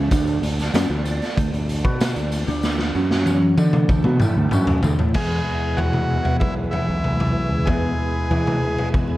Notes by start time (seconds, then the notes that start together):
Already playing: G#3 C#4 A5
0.09 D2 D3 A3 D4 D5, kick, closed hi-hat, tambourine
0.27 closed hi-hat
0.42 D2 D3 A3, closed hi-hat
0.59 snare, closed hi-hat
0.73 F#2 F#3 C#4, snare, closed hi-hat, tambourine
0.90 D2 D3 A3
1.05 closed hi-hat, tambourine
1.22 snare, closed hi-hat
1.37 D2 D3 A3, kick, closed hi-hat, tambourine
1.53 D2 D3 A3, closed hi-hat
1.69 closed hi-hat
1.84 B2 B3 F#4 B4, kick
2.00 snare, closed hi-hat, tambourine
2.16 D2 D3 A3, closed hi-hat
2.32 closed hi-hat, tambourine
2.47 D2 D3 A3 D4, closed hi-hat
2.63 snare, tambourine
2.79 snare
2.94 F#2 C#3 F#3 C#4 F#4 C#5, tambourine
3.11 snare
3.26 high tom, tambourine
3.57 D3 A3 D4 A4 D5, high tom, tambourine
3.73 mid tom
3.89 D2 D3 A3, kick, tambourine
4.04 B2 B3 F#4, mid tom
4.20 A2 A3 E4, mid tom, tambourine
4.37 D2 D3 A3
4.51 F#2 F#3 C#4 F#4, mid tom, tambourine
4.67 floor tom
4.83 D2 D3 A3, floor tom, tambourine
4.99 A2 A3 E4, floor tom
5.13 E2 B2 E3 G#3 G#4 B4 E5 G#5, kick, floor tom, crash
5.17 B3 E4
5.77 E2 F#4, floor tom
5.93 mid tom
6.25 floor tom
6.40 B1 E4, kick
6.71 E4, floor tom
6.88 B1
7.04 mid tom
7.20 floor tom, mid tom
7.52 C#2
7.66 E2 B2 E3 G#3 G#4, kick, floor tom
7.70 B3 E4
8.31 E3, floor tom
8.47 mid tom
8.78 floor tom
8.94 E2, kick